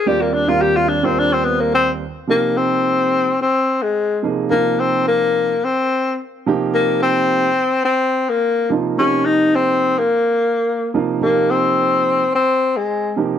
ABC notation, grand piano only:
X:1
M:4/4
L:1/16
Q:1/4=107
K:Eb
V:1 name="Grand piano"
[E,,G,CFBd]3 [E,,G,CFBf]4 [E,,G,CFBc]6- [E,,G,CFBc] z2 | [K:Ab] [C,F,B,EG]6- [C,F,B,EG] z6 z [C,F,B,EA]2 | [C,F,B,EF]6- [C,F,B,EF] z6 z [C,F,B,EG]2- | [C,F,B,EG]4- [C,F,B,EG] z8 z [C,F,B,EF]2 |
[C,F,B,EG]6- [C,F,B,EG] z6 z [C,F,B,EF]2 | [C,F,B,EG]6- [C,F,B,EG] z6 z [C,F,B,EG]2 |]